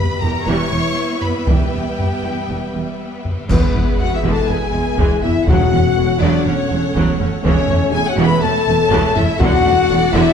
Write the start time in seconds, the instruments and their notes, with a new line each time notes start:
Already playing: string section G3 B3 B4 E5, violin section B4 B5
0.00 french horn section G4
0.22 double bass section E1, cello section E2, viola section G3 B3, violin section A#4 A#5
0.46 double bass section E1, cello section E2, viola section E3 G3, french horn section E4, violin section C#5 C#6
0.72 double bass section E1, cello section E2, viola section G3 B3
1.22 violin section B4 B5, taiko low
1.47 double bass section E1, cello section E2, viola section E3 G3, violin section G4 G5, french horn section G4, taiko
1.73 double bass section E1, cello section E2, viola section G3 B3
1.98 viola section B3, taiko low
2.24 double bass section E1, cello section E2
2.48 double bass section E1, cello section E2
2.73 double bass section E1, cello section E2, viola section G3
3.00 viola section B3
3.25 taiko low
3.49 double bass section E1, timpani E2, cello section E2, viola section E3 G#3, french horn section B3, string section B3 G#4 B4 E5, flute B4, violin section B4, concert bass drum, taiko, crash
3.75 double bass section E1, cello section E2, viola section B3 E4, taiko low
3.99 double bass section E1, cello section E2, viola section G#3 B3, french horn section F#4, flute F#5, violin section F#5
4.15 french horn section E4, violin section E5, flute E5
4.23 double bass section E1, cello section E2, viola section E3 G#3
4.30 french horn section A4, flute A5, violin section A5
4.47 double bass section E1, cello section E2, viola section B3 E4, french horn section G#4, violin section G#5, flute G#5
4.73 double bass section E1, cello section E2, viola section G#3 B3
4.97 double bass section E1, cello section E2, viola section E3 G#3, taiko
5.21 double bass section E1, cello section E2, viola section B3 E4, french horn section E4, violin section E5, flute E5, taiko low
5.46 double bass section E1, cello section E2, timpani E2, viola section C#3 F#3, string section A3 A4 C#5 F#5, french horn section F#4, violin section F#5, flute F#5, taiko
5.72 double bass section E1, cello section E2, viola section A3 C#4, taiko low
5.97 double bass section E1, cello section E2, viola section F#3 A3
6.19 double bass section E1, cello section E2, viola section C#3 F#3, french horn section D4, violin section D5, flute D5
6.45 double bass section E1, cello section E2, viola section A3 C#4, french horn section C#4, violin section C#5, flute C#5
6.71 double bass section E1, cello section E2, viola section F#3 A3
6.95 double bass section E1, cello section E2, viola section C#3 F#3, taiko
7.20 double bass section E1, cello section E2, viola section A3 C#4, taiko low
7.43 double bass section E1, cello section E2, viola section C#3 E3, french horn section C#4, violin section C#5, flute C#5, string section E5, taiko
7.69 double bass section E1, cello section E2, viola section A3 C#4, taiko low
7.92 double bass section E1, cello section E2, viola section E3 A3, french horn section G#4, violin section G#5, flute G#5
8.08 french horn section F#4, violin section F#5, flute F#5
8.17 double bass section E1, cello section E2, viola section C#3 E3
8.25 french horn section B4, violin section B5, flute B5
8.40 double bass section E1, cello section E2, viola section A3 C#4, french horn section A4, flute A5, violin section A5
8.67 double bass section E1, cello section E2, viola section E3 A3
8.91 double bass section E1, cello section E2, viola section C#3 E3, taiko
9.15 double bass section E1, cello section E2, viola section A3 C#4, french horn section E4, violin section E5, flute E5, taiko low
9.39 double bass section E1, timpani E2, cello section E2, viola section D3 F#3, french horn section F#4, string section D5 F#5, flute F#5, violin section F#5, taiko
9.65 double bass section E1, cello section E2, viola section A3 D4, taiko low
9.90 double bass section E1, cello section E2, viola section F#3 A3
10.12 double bass section E1, cello section E2, viola section D3 F#3, french horn section E4, flute E5, violin section E5